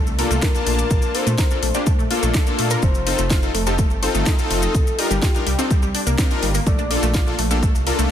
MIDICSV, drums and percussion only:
0, 0, Header, 1, 2, 480
1, 0, Start_track
1, 0, Key_signature, -2, "major"
1, 0, Tempo, 480000
1, 907, Time_signature, 4, 2, 24, 8
1, 8110, End_track
2, 0, Start_track
2, 0, Title_t, "Drums"
2, 66, Note_on_c, 9, 70, 39
2, 166, Note_off_c, 9, 70, 0
2, 186, Note_on_c, 9, 46, 107
2, 286, Note_off_c, 9, 46, 0
2, 307, Note_on_c, 9, 42, 56
2, 316, Note_on_c, 9, 70, 76
2, 407, Note_off_c, 9, 42, 0
2, 416, Note_off_c, 9, 70, 0
2, 421, Note_on_c, 9, 70, 69
2, 423, Note_on_c, 9, 38, 122
2, 426, Note_on_c, 9, 36, 119
2, 426, Note_on_c, 9, 42, 70
2, 521, Note_off_c, 9, 70, 0
2, 523, Note_off_c, 9, 38, 0
2, 526, Note_off_c, 9, 36, 0
2, 526, Note_off_c, 9, 42, 0
2, 546, Note_on_c, 9, 42, 38
2, 554, Note_on_c, 9, 70, 41
2, 646, Note_off_c, 9, 42, 0
2, 654, Note_off_c, 9, 70, 0
2, 666, Note_on_c, 9, 46, 109
2, 766, Note_off_c, 9, 46, 0
2, 786, Note_on_c, 9, 42, 55
2, 787, Note_on_c, 9, 70, 79
2, 886, Note_off_c, 9, 42, 0
2, 887, Note_off_c, 9, 70, 0
2, 904, Note_on_c, 9, 70, 72
2, 906, Note_on_c, 9, 36, 123
2, 906, Note_on_c, 9, 42, 67
2, 1004, Note_off_c, 9, 70, 0
2, 1006, Note_off_c, 9, 36, 0
2, 1006, Note_off_c, 9, 42, 0
2, 1020, Note_on_c, 9, 70, 40
2, 1120, Note_off_c, 9, 70, 0
2, 1146, Note_on_c, 9, 46, 108
2, 1246, Note_off_c, 9, 46, 0
2, 1267, Note_on_c, 9, 42, 53
2, 1271, Note_on_c, 9, 70, 73
2, 1367, Note_off_c, 9, 42, 0
2, 1371, Note_off_c, 9, 70, 0
2, 1382, Note_on_c, 9, 70, 68
2, 1383, Note_on_c, 9, 38, 127
2, 1386, Note_on_c, 9, 36, 127
2, 1386, Note_on_c, 9, 42, 69
2, 1482, Note_off_c, 9, 70, 0
2, 1483, Note_off_c, 9, 38, 0
2, 1486, Note_off_c, 9, 36, 0
2, 1486, Note_off_c, 9, 42, 0
2, 1507, Note_on_c, 9, 70, 43
2, 1607, Note_off_c, 9, 70, 0
2, 1626, Note_on_c, 9, 46, 110
2, 1726, Note_off_c, 9, 46, 0
2, 1744, Note_on_c, 9, 70, 80
2, 1747, Note_on_c, 9, 42, 54
2, 1844, Note_off_c, 9, 70, 0
2, 1847, Note_off_c, 9, 42, 0
2, 1864, Note_on_c, 9, 70, 72
2, 1866, Note_on_c, 9, 36, 123
2, 1866, Note_on_c, 9, 42, 68
2, 1964, Note_off_c, 9, 70, 0
2, 1966, Note_off_c, 9, 42, 0
2, 1967, Note_off_c, 9, 36, 0
2, 1994, Note_on_c, 9, 70, 38
2, 2094, Note_off_c, 9, 70, 0
2, 2106, Note_on_c, 9, 46, 112
2, 2206, Note_off_c, 9, 46, 0
2, 2227, Note_on_c, 9, 42, 54
2, 2231, Note_on_c, 9, 70, 83
2, 2327, Note_off_c, 9, 42, 0
2, 2331, Note_off_c, 9, 70, 0
2, 2341, Note_on_c, 9, 70, 66
2, 2343, Note_on_c, 9, 38, 125
2, 2346, Note_on_c, 9, 42, 66
2, 2347, Note_on_c, 9, 36, 122
2, 2441, Note_off_c, 9, 70, 0
2, 2443, Note_off_c, 9, 38, 0
2, 2446, Note_off_c, 9, 42, 0
2, 2447, Note_off_c, 9, 36, 0
2, 2465, Note_on_c, 9, 70, 46
2, 2467, Note_on_c, 9, 42, 38
2, 2565, Note_off_c, 9, 70, 0
2, 2567, Note_off_c, 9, 42, 0
2, 2586, Note_on_c, 9, 46, 110
2, 2686, Note_off_c, 9, 46, 0
2, 2705, Note_on_c, 9, 70, 89
2, 2707, Note_on_c, 9, 46, 62
2, 2805, Note_off_c, 9, 70, 0
2, 2807, Note_off_c, 9, 46, 0
2, 2823, Note_on_c, 9, 70, 67
2, 2826, Note_on_c, 9, 42, 64
2, 2827, Note_on_c, 9, 36, 127
2, 2923, Note_off_c, 9, 70, 0
2, 2926, Note_off_c, 9, 42, 0
2, 2927, Note_off_c, 9, 36, 0
2, 2946, Note_on_c, 9, 70, 40
2, 3046, Note_off_c, 9, 70, 0
2, 3066, Note_on_c, 9, 46, 110
2, 3166, Note_off_c, 9, 46, 0
2, 3184, Note_on_c, 9, 70, 81
2, 3187, Note_on_c, 9, 42, 50
2, 3284, Note_off_c, 9, 70, 0
2, 3287, Note_off_c, 9, 42, 0
2, 3303, Note_on_c, 9, 38, 127
2, 3306, Note_on_c, 9, 36, 127
2, 3306, Note_on_c, 9, 42, 65
2, 3307, Note_on_c, 9, 70, 64
2, 3403, Note_off_c, 9, 38, 0
2, 3406, Note_off_c, 9, 36, 0
2, 3406, Note_off_c, 9, 42, 0
2, 3407, Note_off_c, 9, 70, 0
2, 3426, Note_on_c, 9, 70, 37
2, 3526, Note_off_c, 9, 70, 0
2, 3546, Note_on_c, 9, 46, 108
2, 3646, Note_off_c, 9, 46, 0
2, 3665, Note_on_c, 9, 70, 74
2, 3667, Note_on_c, 9, 42, 52
2, 3765, Note_off_c, 9, 70, 0
2, 3767, Note_off_c, 9, 42, 0
2, 3783, Note_on_c, 9, 70, 67
2, 3786, Note_on_c, 9, 36, 122
2, 3787, Note_on_c, 9, 42, 64
2, 3883, Note_off_c, 9, 70, 0
2, 3886, Note_off_c, 9, 36, 0
2, 3887, Note_off_c, 9, 42, 0
2, 3903, Note_on_c, 9, 70, 39
2, 4003, Note_off_c, 9, 70, 0
2, 4026, Note_on_c, 9, 46, 114
2, 4126, Note_off_c, 9, 46, 0
2, 4147, Note_on_c, 9, 42, 52
2, 4147, Note_on_c, 9, 70, 80
2, 4247, Note_off_c, 9, 42, 0
2, 4247, Note_off_c, 9, 70, 0
2, 4263, Note_on_c, 9, 38, 121
2, 4266, Note_on_c, 9, 36, 126
2, 4266, Note_on_c, 9, 42, 64
2, 4269, Note_on_c, 9, 70, 65
2, 4363, Note_off_c, 9, 38, 0
2, 4366, Note_off_c, 9, 36, 0
2, 4366, Note_off_c, 9, 42, 0
2, 4369, Note_off_c, 9, 70, 0
2, 4386, Note_on_c, 9, 42, 36
2, 4388, Note_on_c, 9, 70, 40
2, 4486, Note_off_c, 9, 42, 0
2, 4488, Note_off_c, 9, 70, 0
2, 4506, Note_on_c, 9, 46, 113
2, 4606, Note_off_c, 9, 46, 0
2, 4624, Note_on_c, 9, 70, 80
2, 4626, Note_on_c, 9, 42, 49
2, 4724, Note_off_c, 9, 70, 0
2, 4726, Note_off_c, 9, 42, 0
2, 4746, Note_on_c, 9, 36, 126
2, 4746, Note_on_c, 9, 42, 65
2, 4746, Note_on_c, 9, 70, 69
2, 4846, Note_off_c, 9, 36, 0
2, 4846, Note_off_c, 9, 42, 0
2, 4846, Note_off_c, 9, 70, 0
2, 4871, Note_on_c, 9, 70, 43
2, 4971, Note_off_c, 9, 70, 0
2, 4986, Note_on_c, 9, 46, 110
2, 5086, Note_off_c, 9, 46, 0
2, 5107, Note_on_c, 9, 42, 50
2, 5110, Note_on_c, 9, 70, 78
2, 5207, Note_off_c, 9, 42, 0
2, 5210, Note_off_c, 9, 70, 0
2, 5223, Note_on_c, 9, 38, 119
2, 5226, Note_on_c, 9, 36, 127
2, 5226, Note_on_c, 9, 42, 64
2, 5232, Note_on_c, 9, 70, 76
2, 5323, Note_off_c, 9, 38, 0
2, 5326, Note_off_c, 9, 36, 0
2, 5326, Note_off_c, 9, 42, 0
2, 5332, Note_off_c, 9, 70, 0
2, 5346, Note_on_c, 9, 42, 36
2, 5355, Note_on_c, 9, 70, 42
2, 5446, Note_off_c, 9, 42, 0
2, 5455, Note_off_c, 9, 70, 0
2, 5466, Note_on_c, 9, 46, 109
2, 5566, Note_off_c, 9, 46, 0
2, 5587, Note_on_c, 9, 42, 51
2, 5591, Note_on_c, 9, 70, 73
2, 5687, Note_off_c, 9, 42, 0
2, 5691, Note_off_c, 9, 70, 0
2, 5706, Note_on_c, 9, 36, 127
2, 5706, Note_on_c, 9, 42, 65
2, 5707, Note_on_c, 9, 70, 62
2, 5806, Note_off_c, 9, 36, 0
2, 5806, Note_off_c, 9, 42, 0
2, 5807, Note_off_c, 9, 70, 0
2, 5825, Note_on_c, 9, 70, 40
2, 5925, Note_off_c, 9, 70, 0
2, 5946, Note_on_c, 9, 46, 107
2, 6046, Note_off_c, 9, 46, 0
2, 6067, Note_on_c, 9, 42, 51
2, 6067, Note_on_c, 9, 70, 85
2, 6167, Note_off_c, 9, 42, 0
2, 6167, Note_off_c, 9, 70, 0
2, 6183, Note_on_c, 9, 38, 115
2, 6186, Note_on_c, 9, 36, 126
2, 6186, Note_on_c, 9, 42, 62
2, 6187, Note_on_c, 9, 70, 73
2, 6283, Note_off_c, 9, 38, 0
2, 6286, Note_off_c, 9, 36, 0
2, 6286, Note_off_c, 9, 42, 0
2, 6287, Note_off_c, 9, 70, 0
2, 6307, Note_on_c, 9, 42, 36
2, 6307, Note_on_c, 9, 70, 41
2, 6407, Note_off_c, 9, 42, 0
2, 6407, Note_off_c, 9, 70, 0
2, 6426, Note_on_c, 9, 46, 109
2, 6526, Note_off_c, 9, 46, 0
2, 6545, Note_on_c, 9, 70, 75
2, 6547, Note_on_c, 9, 46, 65
2, 6645, Note_off_c, 9, 70, 0
2, 6647, Note_off_c, 9, 46, 0
2, 6665, Note_on_c, 9, 70, 66
2, 6666, Note_on_c, 9, 36, 120
2, 6666, Note_on_c, 9, 42, 64
2, 6765, Note_off_c, 9, 70, 0
2, 6766, Note_off_c, 9, 36, 0
2, 6766, Note_off_c, 9, 42, 0
2, 6785, Note_on_c, 9, 70, 41
2, 6885, Note_off_c, 9, 70, 0
2, 6906, Note_on_c, 9, 46, 105
2, 7006, Note_off_c, 9, 46, 0
2, 7028, Note_on_c, 9, 42, 49
2, 7029, Note_on_c, 9, 70, 80
2, 7127, Note_off_c, 9, 42, 0
2, 7129, Note_off_c, 9, 70, 0
2, 7139, Note_on_c, 9, 70, 70
2, 7144, Note_on_c, 9, 38, 118
2, 7146, Note_on_c, 9, 36, 120
2, 7147, Note_on_c, 9, 42, 65
2, 7239, Note_off_c, 9, 70, 0
2, 7244, Note_off_c, 9, 38, 0
2, 7246, Note_off_c, 9, 36, 0
2, 7247, Note_off_c, 9, 42, 0
2, 7268, Note_on_c, 9, 70, 42
2, 7368, Note_off_c, 9, 70, 0
2, 7386, Note_on_c, 9, 46, 109
2, 7486, Note_off_c, 9, 46, 0
2, 7507, Note_on_c, 9, 42, 51
2, 7508, Note_on_c, 9, 70, 78
2, 7607, Note_off_c, 9, 42, 0
2, 7608, Note_off_c, 9, 70, 0
2, 7626, Note_on_c, 9, 36, 120
2, 7626, Note_on_c, 9, 42, 64
2, 7631, Note_on_c, 9, 70, 65
2, 7726, Note_off_c, 9, 36, 0
2, 7726, Note_off_c, 9, 42, 0
2, 7731, Note_off_c, 9, 70, 0
2, 7753, Note_on_c, 9, 70, 42
2, 7853, Note_off_c, 9, 70, 0
2, 7866, Note_on_c, 9, 46, 104
2, 7966, Note_off_c, 9, 46, 0
2, 7987, Note_on_c, 9, 42, 53
2, 7990, Note_on_c, 9, 70, 79
2, 8087, Note_off_c, 9, 42, 0
2, 8090, Note_off_c, 9, 70, 0
2, 8110, End_track
0, 0, End_of_file